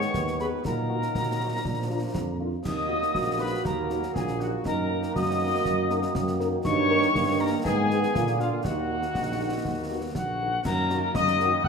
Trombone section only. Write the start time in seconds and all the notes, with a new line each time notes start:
Already playing: D#3 B3
0.64 F#3 D#4
1.64 F3 D4
2.65 F#3 A#3
4.65 D#3 A#3
6.65 D#3 A#3
7.64 B3
8.16 D3 A#3
8.67 D#3 A#3
10.64 D#3 A#3